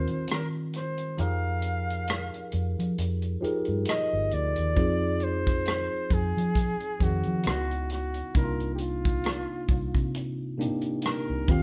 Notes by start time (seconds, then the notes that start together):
Already playing: D#3 C4 F4 A#4 C5
0.07 D#3, closed hi-hat
0.28 cross-stick, closed hi-hat
0.32 A#4
0.74 C5, cross-stick, closed hi-hat
0.98 closed hi-hat
1.17 F2 F3 D#4 G4 G#4 A#4 F5, closed hi-hat
1.62 closed hi-hat
1.90 closed hi-hat
2.08 cross-stick, closed hi-hat
2.34 closed hi-hat
2.52 F2, closed hi-hat
2.79 F3, closed hi-hat
2.98 F2, closed hi-hat
3.22 closed hi-hat
3.41 F3 D#4 G4 G#4 A#4, muted fingered electric bass stroke, closed hi-hat
3.65 G2, closed hi-hat
3.85 D#5, cross-stick, closed hi-hat
4.13 G1
4.31 D2 D5, closed hi-hat
4.56 D#2, closed hi-hat
4.75 F2 F3 C4 D#4 G#4, kick, closed hi-hat
5.20 C5, closed hi-hat
5.47 kick, cross-stick, closed hi-hat
5.66 cross-stick, closed hi-hat
6.10 F2 G#4, kick, closed hi-hat
6.37 F3, closed hi-hat
6.55 kick, closed hi-hat
6.80 closed hi-hat
6.99 F2 D#3 C4 D#4 F#4 G#4, kick, closed hi-hat
7.23 F3, closed hi-hat
7.43 C#2 C#3 B3 D#4 E4, cross-stick, closed hi-hat
7.48 F#4
7.71 closed hi-hat
7.90 F#4, cross-stick, closed hi-hat
8.14 closed hi-hat
8.34 C2 C3 A#3 D4 D#4 E4 A#4, kick, closed hi-hat
8.44 F4
8.60 closed hi-hat
8.75 G4, closed hi-hat
8.81 F4
9.05 kick, closed hi-hat
9.24 cross-stick, closed hi-hat
9.68 C2, kick, closed hi-hat
9.95 C3, kick, closed hi-hat
10.15 closed hi-hat
10.58 C3 A#3 D4 D#4 G4, closed hi-hat
10.81 closed hi-hat
11.02 A#4, cross-stick, closed hi-hat
11.30 C2
11.47 D#2 D#3 C4 F4 G4 F5, kick, cross-stick, closed hi-hat